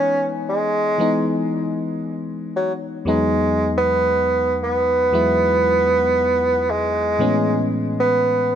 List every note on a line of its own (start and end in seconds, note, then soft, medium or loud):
0.00 0.98 E3 medium
0.00 0.99 G#3 medium
0.00 1.00 B3 medium
0.00 0.31 C#4 loud
0.00 1.01 D#4 medium
0.49 1.48 G#3 medium
0.98 2.41 E3 medium
0.98 2.42 G#3 medium
0.98 2.42 B3 medium
0.98 2.43 D#4 medium
2.56 2.72 F#3 medium
3.05 4.48 E2 medium
3.05 4.49 F#3 medium
3.05 4.49 G#3 medium
3.05 3.72 G#3 loud
3.05 4.49 B3 medium
3.05 4.50 D#4 medium
3.77 4.59 B3 loud
4.64 6.72 B3 loud
5.12 6.55 E2 medium
5.12 6.56 F#3 medium
5.12 6.56 G#3 medium
5.12 6.56 B3 medium
5.12 6.57 E4 medium
6.71 7.72 G#3 loud
7.19 8.55 A2 medium
7.19 8.55 E3 medium
7.19 8.55 G#3 medium
7.19 8.55 B3 medium
7.19 8.55 C#4 medium
8.00 8.55 B3 loud